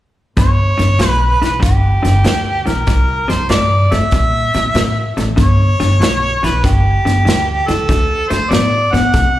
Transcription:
0.37 upright bass G1, clean electric guitar G2 D3, harmonica C#5, kick, snare, closed hi-hat
0.78 upright bass G1, clean electric guitar G2 D3, snare, closed hi-hat
0.99 upright bass B1, clean electric guitar G2 E3, snare, closed hi-hat
1.10 harmonica B4
1.42 upright bass B1, clean electric guitar G2 E3, harmonica B4, snare, closed hi-hat
1.60 upright bass G1, clean electric guitar G2 D3, harmonica G4, kick, closed hi-hat
1.64 snare
2.03 upright bass G1, clean electric guitar G2 D3, snare, closed hi-hat
2.24 upright bass D2, clean electric guitar G2 E3, snare, closed hi-hat
2.66 upright bass B1, clean electric guitar G2 E3, harmonica A#4, snare, closed hi-hat
2.87 upright bass C2, clean electric guitar C3 G3, kick, snare, closed hi-hat
3.28 upright bass C2, clean electric guitar C3 G3, harmonica C5, snare, closed hi-hat
3.49 upright bass G2, clean electric guitar C3 A3, harmonica D5, snare, closed hi-hat
3.92 upright bass G2, clean electric guitar C3 A3, harmonica E5, snare, closed hi-hat
4.11 upright bass A#2, clean electric guitar C3 G3, kick, snare, closed hi-hat
4.54 upright bass A#2, clean electric guitar C3 G3, snare, closed hi-hat
4.75 upright bass A2, clean electric guitar C3 A3, snare, closed hi-hat
5.17 upright bass A1, clean electric guitar C3 A3, snare, closed hi-hat
5.36 upright bass G1, clean electric guitar G2 D3, harmonica C#5, kick, snare, closed hi-hat
5.80 upright bass G1, clean electric guitar G2 D3, snare, closed hi-hat
6.00 upright bass B1, clean electric guitar G2 E3, snare, closed hi-hat
6.43 upright bass B1, clean electric guitar G2 E3, harmonica B4, snare, closed hi-hat
6.64 upright bass G1, clean electric guitar G2 D3, harmonica G4, kick, snare, closed hi-hat
7.05 upright bass G1, clean electric guitar G2 D3, snare, closed hi-hat
7.25 upright bass D2, clean electric guitar G2 E3, snare, closed hi-hat
7.68 upright bass C#2, clean electric guitar G2 E3, harmonica A4, snare, closed hi-hat
7.89 upright bass D2, clean electric guitar D3 A3, kick, snare, closed hi-hat
8.29 upright bass D2, clean electric guitar D3 A3, harmonica C5, snare, closed hi-hat
8.51 upright bass A2, clean electric guitar D3 B3, harmonica D5, snare, closed hi-hat
8.93 upright bass A2, clean electric guitar D3 B3, harmonica F#5, snare, closed hi-hat
9.14 upright bass C3, clean electric guitar D3 A3, kick, snare, closed hi-hat

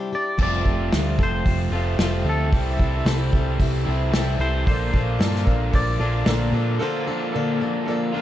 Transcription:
Already playing: steel-string acoustic guitar C3 G3 D4 E4 G4
0.13 steel-string acoustic guitar D4 E4 G4, clean electric guitar D5
0.38 picked electric bass F1, overdriven electric guitar F2 C3 A3, steel-string acoustic guitar F3 G3 C4 F4 A4, kick, crash
0.43 clean electric guitar D5
0.65 picked electric bass F1, steel-string acoustic guitar C4 F4 A4, kick
0.92 picked electric bass D2, steel-string acoustic guitar F3 G3 C4 F4, snare, open hi-hat
0.96 steel-string acoustic guitar A4
1.19 picked electric bass F1, steel-string acoustic guitar C4 F4 A4, kick
1.23 clean electric guitar C5
1.45 picked electric bass F1, steel-string acoustic guitar G3 C4 F4 A4, kick, open hi-hat
1.70 picked electric bass F1, overdriven electric guitar C3 F3 A3, steel-string acoustic guitar A4
1.75 overdriven electric guitar F2, steel-string acoustic guitar C4 F4
1.97 picked electric bass F1, overdriven electric guitar F2 C3 A3, steel-string acoustic guitar F3 G3 A4, snare, open hi-hat
2.02 steel-string acoustic guitar C4 F4
2.24 picked electric bass D2, steel-string acoustic guitar C4 F4 A4
2.29 clean electric guitar A4
2.51 picked electric bass C2, steel-string acoustic guitar C3 G3 C4 E4 A4, overdriven electric guitar E3, kick, open hi-hat
2.77 picked electric bass C2, steel-string acoustic guitar E4 A4, kick
2.81 steel-string acoustic guitar C4
3.05 picked electric bass C2, steel-string acoustic guitar C3 G3 C4 E4 A4, snare, open hi-hat
3.32 picked electric bass C2, steel-string acoustic guitar E4 A4, kick
3.36 steel-string acoustic guitar C4
3.59 picked electric bass C2, steel-string acoustic guitar G3 C4 E4 A4, kick, open hi-hat
3.85 picked electric bass C2, overdriven electric guitar C3 E3 G3 C4 E4, steel-string acoustic guitar A4
3.89 steel-string acoustic guitar C4 E4
4.13 picked electric bass C2, steel-string acoustic guitar C3 G3 C4 E4 A4, overdriven electric guitar E3, snare, open hi-hat
4.39 picked electric bass C2, steel-string acoustic guitar C4 E4 A4, clean electric guitar C5
4.67 picked electric bass A#1, steel-string acoustic guitar A#2 D3 F3 A#3 D4 A4, overdriven electric guitar F4, upright piano A4 A#4 D5, clean electric guitar C5, kick, open hi-hat
4.93 picked electric bass A#1, steel-string acoustic guitar F3 A#3 D4 A4, kick
5.19 picked electric bass G2, steel-string acoustic guitar A#2 D3 F3 A#3 D4 A4, upright piano A4 A#4 D5, snare, open hi-hat
5.35 snare
5.44 picked electric bass A#1, steel-string acoustic guitar A#3 D4 A4, upright piano A4 A#4 D5, kick
5.49 steel-string acoustic guitar F3
5.71 picked electric bass A#1, steel-string acoustic guitar F3 A#3, upright piano A4 A#4 C5, clean electric guitar D5, kick, open hi-hat
5.75 steel-string acoustic guitar D4 A4
5.99 picked electric bass A#1, overdriven electric guitar A#2 D3 F4, steel-string acoustic guitar A#3 D4 A4
6.04 steel-string acoustic guitar F3
6.26 picked electric bass A#1, steel-string acoustic guitar A#2 D3 F3 A#3 D4 A4, upright piano A4 A#4 D5, snare, open hi-hat
6.31 overdriven electric guitar F4
6.52 picked electric bass A#2, steel-string acoustic guitar A#3 D4 A4
6.57 steel-string acoustic guitar F3
6.79 steel-string acoustic guitar A#2 D3 F3 A#3 D4 A4, upright piano A4 A#4 C5
6.84 overdriven electric guitar F4
7.07 steel-string acoustic guitar F3 A#3 D4 A4
7.32 steel-string acoustic guitar A#2 D3 A#3 D4, upright piano A4 A#4 D5
7.36 steel-string acoustic guitar F3 A4
7.57 upright piano A4 A#4 D5
7.61 steel-string acoustic guitar F3 A#3 D4 A4
7.85 steel-string acoustic guitar F3 A#3 D4, upright piano A4 A#4 D5
7.90 steel-string acoustic guitar A4
8.13 overdriven electric guitar A#2 D3 F4, steel-string acoustic guitar D4 A4
8.17 steel-string acoustic guitar F3 A#3

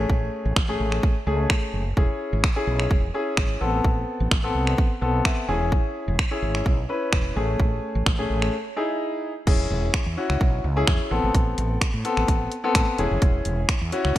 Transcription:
Already playing: grand piano A3 C#4 G#4
0.09 fretless electric bass A1, kick
0.45 fretless electric bass A1
0.56 fretless electric bass A1, finger snap, kick
0.68 grand piano A3 C#4 G#4
0.80 fretless electric bass A1
0.92 finger snap
1.03 kick
1.26 fretless electric bass C#2, grand piano A3 C#4 G#4
1.50 finger snap, kick
1.74 fretless electric bass F#1
1.97 fretless electric bass E1, grand piano C#4 E4 G#4, kick
2.33 fretless electric bass G#1
2.44 finger snap, kick
2.56 grand piano C#4 E4 G#4
2.67 fretless electric bass B1
2.80 finger snap
2.91 fretless electric bass E1, kick
3.14 grand piano C#4 E4 G#4
3.37 fretless electric bass G#1, finger snap, kick
3.61 fretless electric bass A1, grand piano B3 C4 A4
3.84 fretless electric bass A1, kick
4.20 fretless electric bass A1
4.31 finger snap, kick
4.43 grand piano B3 C4 A4
4.55 fretless electric bass C2
4.67 finger snap
4.78 kick
5.01 fretless electric bass B1, grand piano B3 C4 A4
5.25 grand piano E5, finger snap, kick
5.48 fretless electric bass E1, grand piano C#4 E4 G#4 G#5
5.72 kick
6.08 fretless electric bass E1
6.19 finger snap, kick
6.31 grand piano C#4 E4 G#4
6.42 fretless electric bass G#1
6.55 finger snap
6.66 fretless electric bass B1, kick
6.89 grand piano C#4 E4 B4
7.13 fretless electric bass E1, finger snap, kick
7.36 fretless electric bass A1, grand piano A3 C#4 G#4
7.60 fretless electric bass A1, kick
7.95 fretless electric bass A1
8.06 fretless electric bass A1, finger snap, kick
8.18 grand piano A3 C#4 G#4
8.30 fretless electric bass A1
8.42 finger snap
8.76 grand piano D#4 E4 G#4
9.47 fretless electric bass E1, grand piano C#4 E4 G#4, kick, crash
9.70 fretless electric bass E1
9.94 finger snap, kick
10.06 fretless electric bass E2
10.17 grand piano C#4 E4 F#4
10.30 fretless electric bass C#2, finger snap
10.41 fretless electric bass B1, kick
10.64 fretless electric bass C#2
10.76 grand piano C#4 E4 G#4
10.87 fretless electric bass E2, finger snap, kick
11.11 fretless electric bass A1, grand piano B3 C4 A4
11.23 fretless electric bass G#1
11.35 fretless electric bass A1, kick, closed hi-hat
11.58 fretless electric bass A1, closed hi-hat
11.81 finger snap, kick, closed hi-hat
11.94 fretless electric bass A2
12.04 grand piano B3 C4 A4, closed hi-hat
12.17 fretless electric bass A1, finger snap
12.28 fretless electric bass A1, kick, closed hi-hat
12.52 closed hi-hat
12.64 grand piano B3 C4 A4
12.75 fretless electric bass A2, finger snap, kick, closed hi-hat
12.98 fretless electric bass E1, grand piano C#4 E4 G#4, closed hi-hat
13.11 fretless electric bass F#1
13.22 fretless electric bass E1, kick, closed hi-hat
13.45 fretless electric bass E1, closed hi-hat
13.69 finger snap, kick, closed hi-hat
13.81 fretless electric bass E2
13.92 grand piano C#4 E4 F#4, closed hi-hat
14.05 fretless electric bass C#2, finger snap

